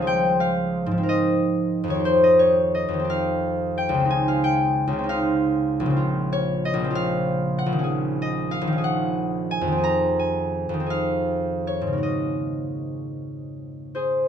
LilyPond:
<<
  \new Staff \with { instrumentName = "Harp" } { \time 6/8 \key des \lydian \tempo 4. = 60 <c'' f'' g''>8 f''4 ees''4~ ees''16 des''16 | c''16 ees''16 des''8 ees''8 f''4 g''8 | aes''16 f''16 g''4 f''4.~ | \key aes \mixolydian f''8 des''8 ees''8 f''4 ges''8~ |
ges''8 ees''8 f''8 ges''4 aes''8 | bes''8 aes''4 f''4 des''8 | ees''2~ ees''8 <aes' c''>8 | }
  \new Staff \with { instrumentName = "Harp" } { \clef bass \time 6/8 \key des \lydian << { aes2.~ | aes2. | r2. | \key aes \mixolydian r2. |
r2. | r2. | r2. | } \\ { <des, f c' aes'>4. <aes, f c' bes'>4. | <f, ees c' g'>4. <f, ees c' g'>4. | <des, des c' ees'>4. <des, des c' ees'>4. | <bes,, des c' f'>4. <bes,, des c' f'>4. |
<bes,, ees des' aes'>4. <bes,, ees des' aes'>4. | <f, ees c' aes'>4. <f, ees c' aes'>4. | <aes, des bes ges'>2. | } >> }
>>